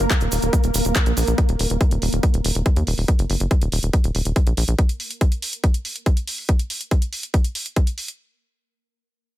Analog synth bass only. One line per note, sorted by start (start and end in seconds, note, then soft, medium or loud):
0.21 0.28 D#1 medium
0.32 0.39 D#1 loud
0.42 0.49 D#1 medium
0.64 0.71 D#1 medium
0.74 0.81 D#1 loud
0.85 0.92 D#1 medium
1.06 1.13 A#1 medium
1.17 1.24 A#1 loud
1.27 1.34 A#1 medium
1.49 1.56 D#1 medium
1.59 1.66 D#1 loud
1.70 1.77 D#1 medium
1.91 1.98 D#1 medium
2.02 2.09 D#1 loud
2.13 2.20 D#1 medium
2.34 2.41 D#1 medium
2.44 2.51 D#1 loud
2.55 2.62 D#1 medium
2.76 2.83 D#2 medium
2.87 2.94 D#1 loud
2.98 3.05 D#1 medium
3.19 3.26 F#1 medium
3.30 3.37 F#1 loud
3.40 3.47 F#1 medium
3.62 3.69 D#1 medium
3.72 3.79 D#1 loud
3.83 3.90 D#1 medium
4.04 4.11 D#1 medium
4.15 4.22 D#1 loud
4.25 4.32 D#1 medium
4.47 4.54 A#1 medium
4.57 4.64 A#1 loud
4.68 4.75 A#1 medium